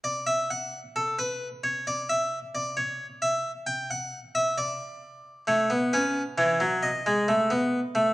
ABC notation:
X:1
M:3/4
L:1/16
Q:1/4=66
K:Amix
V:1 name="Harpsichord"
d e f2 A B2 c d e2 d | c2 e2 g f2 e d4 | c2 B2 c2 _e6 |]
V:2 name="Harpsichord"
z12 | z12 | A, B, C2 E, F,2 ^G, A, B,2 A, |]